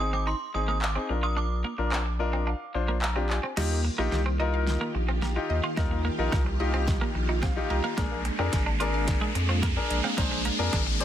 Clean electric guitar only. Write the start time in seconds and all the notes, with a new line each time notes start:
0.13 C4
0.27 D#4
0.54 muted clean electric guitar stroke
0.68 A#3
0.96 C4
1.09 muted clean electric guitar stroke
1.23 F4
1.37 D4
1.64 A#3
1.78 muted clean electric guitar stroke
1.92 C4
2.06 muted clean electric guitar stroke
2.33 C4
2.47 D4
2.75 muted clean electric guitar stroke
2.88 A#3
3.16 C4
3.30 muted clean electric guitar stroke
3.43 C4
3.57 D#4
3.85 muted clean electric guitar stroke
3.98 A#3
4.12 muted clean electric guitar stroke
4.26 C4
4.40 D#4
4.81 A#3
4.95 muted clean electric guitar stroke
5.09 C4
5.22 A#3
5.36 muted clean electric guitar stroke
5.64 F4
5.77 D#4
5.91 muted clean electric guitar stroke
6.05 A#3
6.32 D#4
6.46 muted clean electric guitar stroke
6.74 C4
7.01 A#3
7.15 muted clean electric guitar stroke
7.29 D#4
7.43 C4
7.70 muted clean electric guitar stroke
7.84 A#3
7.98 A#3
8.25 muted clean electric guitar stroke
8.39 C4
8.53 muted clean electric guitar stroke
8.66 D4
8.80 F4
9.21 G#3
9.35 muted clean electric guitar stroke
9.49 C4
9.63 A#3
9.77 muted clean electric guitar stroke
10.04 C4
10.18 A#3
10.31 muted clean electric guitar stroke
10.45 A#3
10.73 D4
10.87 muted clean electric guitar stroke